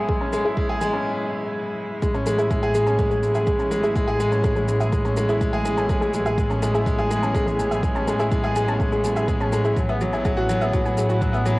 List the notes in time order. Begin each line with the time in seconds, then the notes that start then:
Already playing: A2 F#3 G#3 B3 C#4 E4 G#4
0.09 G#3 G#4, kick
0.21 C#4 A5
0.33 G#3 A4, shaker
0.45 E4 G#4
0.57 G#3, kick
0.69 G#4 E5
0.81 G#3 G#4, shaker
0.93 C#4 A5
2.02 A1 F#3 G#3 G#4, kick, shaker
2.14 C#4 A5, shaker
2.25 G#3 B3 A4, shaker
2.38 E4 G#4, shaker
2.51 G#3, kick, shaker
2.63 G#4 E5, shaker
2.69 G#4
2.75 G#3 G#4, shaker
2.87 C#4 A5, shaker
2.99 G#3 A4, kick, shaker
3.11 G#3 G#4, shaker
3.23 G#3, shaker
3.35 G#4 E5, shaker
3.47 G#3 G#4, kick, shaker
3.59 C#4 A5, shaker
3.71 G#3 A4, shaker
3.83 E4 G#4, shaker
3.96 G#3, kick, shaker
4.08 G#4 E5, shaker
4.20 G#3 G#4, shaker
4.32 C#4 A5, shaker
4.44 G#3 A4, kick, shaker
4.56 G#3 G#4, shaker
4.68 G#3, shaker
4.80 G#4 E5, shaker
4.93 G#3 G#4, kick, shaker
5.05 C#4 A5, shaker
5.17 G#3 A4, shaker
5.29 E4 G#4, shaker
5.41 G#3, kick, shaker
5.53 G#4 E5, shaker
5.65 G#3 G#4, shaker
5.77 C#4 A5, shaker
5.89 G#3 A4, kick, shaker
6.01 G#3 G#4, shaker
6.14 G#3, shaker
6.26 G#4 E5, shaker
6.38 G#3 G#4, kick, shaker
6.50 C#4 A5, shaker
6.62 G#3 A4, shaker
6.74 E4 G#4, shaker
6.86 G#3, kick, shaker
6.98 G#4 E5, shaker
7.11 G#3 G#4, shaker
7.23 C#4 A5, shaker
7.34 G#3 A4, kick, shaker
7.46 G#3 G#4, shaker
7.59 G#3, shaker
7.71 G#4 E5, shaker
7.83 G#3 G#4, kick, shaker
7.95 C#4 A5, shaker
8.07 G#3 A4, shaker
8.19 E4 G#4, shaker
8.31 G#3, kick, shaker
8.44 G#4 E5, shaker
8.56 G#3 G#4, shaker
8.68 C#4 A5, shaker
8.80 G#3 A4, kick, shaker
8.92 G#3 G#4, shaker
9.04 G#3, shaker
9.16 G#4 E5, shaker
9.28 G#3 G#4, kick, shaker
9.40 C#4 A5, shaker
9.52 G#3 A4, shaker
9.65 E4 G#4, shaker
9.77 A1 F#3, kick, shaker
9.89 B3 E5, shaker
10.01 F#3 F#4, shaker
10.13 E4 G#5, shaker
10.25 F#3 G#4, kick, shaker
10.37 F#4, shaker
10.49 F#3, shaker
10.61 B3 E5, shaker
10.73 F#3 E4 F#4, kick, shaker
10.85 F#3 G#5, shaker
10.97 F#3 G#4, shaker
11.09 F#4, shaker
11.21 F#3, kick, shaker
11.33 B3 E5, shaker
11.45 F#3 F#4, shaker